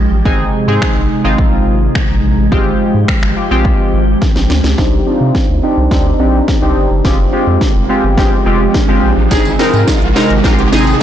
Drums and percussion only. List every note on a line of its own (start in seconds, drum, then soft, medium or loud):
0.25 kick loud
0.82 finger snap loud
0.82 kick loud
1.38 kick loud
1.95 finger snap loud
1.95 kick loud
2.52 kick loud
3.08 finger snap loud
3.08 kick loud
3.23 finger snap medium
3.65 kick loud
4.22 kick loud
4.22 snare medium
4.36 snare medium
4.50 snare medium
4.64 snare medium
4.78 kick loud
4.78 snare medium
5.35 kick loud
5.35 snare medium
5.91 kick loud
5.91 snare medium
6.48 kick loud
6.48 snare medium
7.05 kick loud
7.05 snare medium
7.61 kick loud
7.61 snare medium
8.18 kick loud
8.18 snare medium
8.74 kick loud
8.74 snare medium
9.31 kick loud
9.31 snare medium
9.31 closed hi-hat medium
9.31 tambourine medium
9.45 closed hi-hat medium
9.45 tambourine soft
9.59 snare medium
9.59 open hi-hat medium
9.59 tambourine soft
9.74 closed hi-hat soft
9.74 tambourine soft
9.88 kick loud
9.88 snare medium
9.88 closed hi-hat medium
9.88 tambourine medium
10.02 closed hi-hat medium
10.16 snare medium
10.16 open hi-hat medium
10.16 tambourine soft
10.30 closed hi-hat medium
10.44 kick loud
10.44 snare medium
10.44 closed hi-hat medium
10.44 tambourine medium
10.59 closed hi-hat medium
10.73 snare medium
10.73 open hi-hat medium
10.73 tambourine soft
10.87 closed hi-hat medium
10.87 tambourine soft